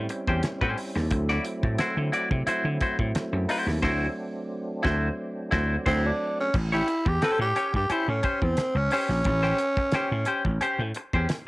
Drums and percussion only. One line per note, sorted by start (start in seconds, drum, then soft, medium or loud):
0.09 closed hi-hat medium
0.28 kick medium
0.43 snare loud
0.43 closed hi-hat loud
0.61 kick medium
0.78 open hi-hat medium
0.96 snare soft
1.11 kick loud
1.11 closed hi-hat loud
1.29 snare soft
1.45 closed hi-hat medium
1.63 kick medium
1.78 snare loud
1.78 closed hi-hat medium
2.13 closed hi-hat medium
2.31 kick medium
2.47 closed hi-hat medium
2.81 kick medium
2.81 closed hi-hat medium
2.99 kick medium
3.15 snare loud
3.15 closed hi-hat loud
3.49 open hi-hat medium
3.68 snare soft
3.83 kick loud
3.83 snare loud
3.83 crash medium
4.85 kick loud
4.85 snare loud
5.52 kick loud
5.52 snare loud
5.86 kick loud
5.86 snare loud
5.86 crash medium
6.54 kick loud
6.54 crash loud
6.73 snare soft
6.88 closed hi-hat medium
7.06 kick loud
7.22 snare loud
7.22 closed hi-hat medium
7.56 closed hi-hat medium
7.74 kick medium
7.90 closed hi-hat medium
8.23 kick loud
8.23 closed hi-hat medium
8.42 kick medium
8.57 snare loud
8.57 closed hi-hat loud
8.91 open hi-hat medium
9.09 snare soft
9.24 kick loud
9.24 closed hi-hat medium
9.43 snare soft
9.58 closed hi-hat medium
9.77 kick loud
9.92 snare loud
9.92 closed hi-hat medium
10.25 closed hi-hat medium
10.45 kick medium
10.61 closed hi-hat medium
10.94 closed hi-hat medium
11.13 kick medium
11.29 snare loud
11.29 closed hi-hat loud